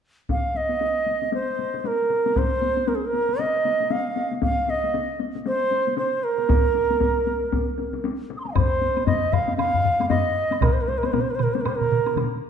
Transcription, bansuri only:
0.31 F5
0.57 D#5
1.34 C5
1.80 C5
1.87 A#4
2.38 C5
2.88 A#4
2.95 G#4
3.05 A#4
3.40 D#5
3.91 F5
4.43 F5
4.70 D#5
5.47 C5
5.98 C5
6.24 A#4
8.37 C6 D#6
8.44 G#5 A#5
8.50 F5
8.54 C5 D#5
9.06 D#5
9.33 F5
9.57 F5
10.09 D#5
10.62 A#4
10.73 C5
10.81 A#4
10.88 C5
10.98 A#4
11.06 C5
11.13 A#4
11.21 C5
11.31 A#4
11.35 C5
11.43 A#4
11.54 C5
11.61 A#4
11.68 C5
11.76 A#4

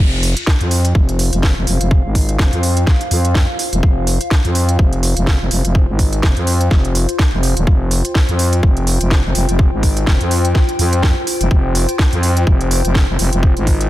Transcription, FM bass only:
0.00 F1
0.61 F2
0.95 F1
1.33 F1
1.57 F1
1.67 F1
1.81 F1
2.05 G#1
2.39 F1
2.53 F2
3.11 F2
3.73 F1
3.83 F1
4.45 F2
4.79 F1
5.17 F1
5.41 F1
5.51 F1
5.65 F1
5.89 G#1
6.23 F1
6.37 F2
6.71 F1
7.33 F1
7.57 D#1
7.67 F1
8.29 F2
8.63 F1
9.01 F1
9.25 F1
9.35 F1
9.49 F1
9.73 G#1
10.07 F1
10.21 F2
10.79 F2
11.41 F1
11.51 F1
12.13 F2
12.47 F1
12.85 F1
13.09 F1
13.19 F1
13.33 F1
13.57 G#1

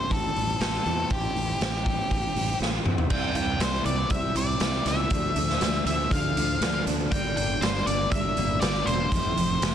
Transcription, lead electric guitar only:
Already playing: C5
0.11 A4
0.62 A4
1.12 G4
3.11 G5
3.36 G5
3.61 C5
3.86 D5
4.12 E5
4.37 D5
4.88 E5
5.87 E5
6.13 F5
7.12 G5
7.37 G5
7.61 C5
7.86 D5
8.12 E5
8.61 D5
8.86 C5

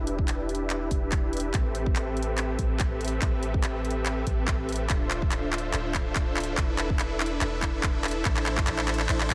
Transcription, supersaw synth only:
Already playing: D4 E4 G4 B4 E5
0.91 D4 B4
1.54 C4 G4
2.59 C4 G4 A4 E5
3.22 C4 G4 A4 E5
4.27 C4 G4 A4 B4 E5
4.90 D4 F4 A4 C5 E5
5.74 D4 F4 A4 C5 E5
6.58 D4 A4
7.42 D4 E4 A4 B4 E5
8.25 D4 E4 A4 C5
8.67 D4 E4 A4 C5 E5
9.09 D4 E4 A4 C5 E5

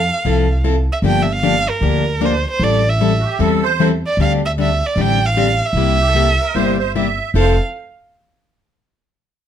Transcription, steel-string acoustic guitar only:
0.25 F3 C4 E4 A4
0.64 F3 C4 E4 A4
1.03 D3 F3 A#3 D4 G4
1.43 D3 F3 A#3 D4 G4
1.82 D3 F3 A#3 D4 G4
2.21 D3 F3 A#3 D4 G4
2.61 E3 G3 C4 E4 A4
3.01 E3 G3 C4 E4 A4
3.40 E3 G3 C4 E4 A4
3.80 E3 G3 C4 E4 A4
4.20 D3 G3 C4 D4 G4
4.58 D3 G3 C4 D4 G4
4.97 D3 G3 C4 D4 G4
5.37 D3 G3 C4 D4 G4
5.76 C3 G3 A#3 E4 G4
6.15 C3 G3 A#3 E4 G4
6.55 C3 G3 A#3 E4 G4
6.95 C3 G3 A#3 E4 G4
7.35 F3 C4 E4 A4

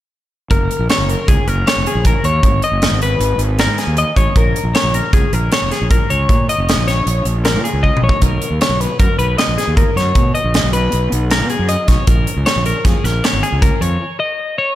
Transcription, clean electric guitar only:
0.51 A#4
0.90 C#5
1.10 A#4
1.28 G#4
1.48 A#4
1.68 C#5
1.87 G#4
2.07 A#4
2.25 C#5
2.64 D#5
3.03 B4
3.60 A#4
3.79 G#4
3.98 D#5
4.17 C#5
4.37 A#4
4.75 C#5
4.95 A#4
5.14 G#4
5.33 A#4
5.53 C#5
5.72 G#4
5.91 A#4
6.10 C#5
6.49 D#5
6.88 C#5
7.45 A#4
7.64 G#4
7.83 D#5
8.04 C#5
8.22 A#4
8.62 C#5
8.81 B4
9.00 A#4
9.19 B4
9.38 D#5
9.58 G#4
9.77 A#4
9.97 C#5
10.35 D#5
10.73 B4
11.31 A#4
11.50 G#4
11.69 D#5
11.88 C#5
12.07 A#4
12.46 C#5
12.66 A#4
12.85 G#4
13.04 A#4
13.24 C#5
13.43 G#4
13.62 A#4
13.81 C#5
14.20 D#5
14.58 C#5

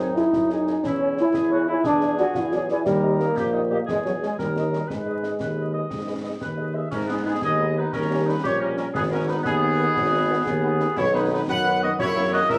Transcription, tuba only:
Already playing: F#2
0.33 F#2
0.84 E2
1.34 E2
1.84 E2
2.35 E2
2.86 D#2
3.37 A#1
3.87 E2
4.39 D#2
4.89 G#2
5.41 D#2
5.91 G#2
6.42 D#2
6.92 G#2
7.43 D#2
7.94 D#2
8.44 A#1
8.94 G#1
9.45 D#2
9.96 G#1
10.47 D#2
10.98 B1
11.49 F#2
11.99 F#2
12.50 C#2

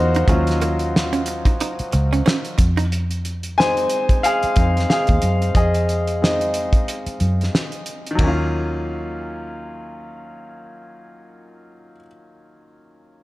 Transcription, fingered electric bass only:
Already playing: E2
0.28 D#2
1.80 muted fingered electric bass stroke
1.94 C#2
2.59 F2
4.44 muted fingered electric bass stroke
4.57 F2
5.09 D#2
5.23 F#2
5.55 F2
7.06 muted fingered electric bass stroke
7.21 F#2
8.19 D#2

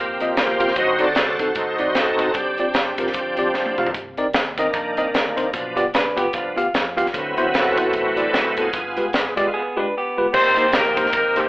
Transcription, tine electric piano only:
0.21 C4 F4 G4 D#5
0.60 C4 F4 G4 F5
0.76 D3
0.99 C4 D#4 F#4 D5
1.40 C4 D#4 F#4 A4
1.79 C4 D#4 F#4 D5
2.20 C4 D#4 F#4 C5
2.36 G2
2.59 C4 F4 G4 D5
2.99 C4 F4 G4 A#4
3.38 C4 F4 G4 D5
3.78 C4 F4 G4 F5
3.94 C3
4.18 C4 D#4 A#4 D5
4.58 C4 D#4 A#4 D#5
4.98 C4 D#4 A#4 D#5
5.37 C4 D#4 A#4 C5
5.53 B2
5.76 B3 F4 G4 D5
6.16 B3 F4 G4 B4
6.56 B3 F4 G4 F5
6.96 B3 F4 G4 F5
7.14 D3
7.37 B3 E4 F#4 C5
7.77 B3 E4 F#4 C5
8.17 B3 E4 F#4 D5
8.57 B3 E4 F#4 A4
8.73 G2
8.97 G#3 F4 G4 B4
9.36 G#3 F4 G4 D5
9.77 G#3 F4 G4 B4
10.17 G#3 F4 G4 B4
10.34 C3
10.57 A#3 D#4 G4 C5
10.97 A#3 D#4 G4 C5
11.36 A#3 D#4 G4 C5

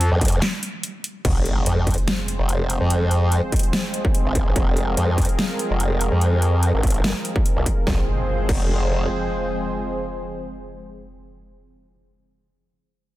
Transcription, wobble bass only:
0.12 F2
1.25 F1
1.66 F2
2.39 F1
2.81 F2
4.25 G1
4.46 G#1
4.56 F1
4.97 F2
5.70 F1
6.12 F2
6.74 G#1
7.56 C2
7.87 F1
8.49 F1

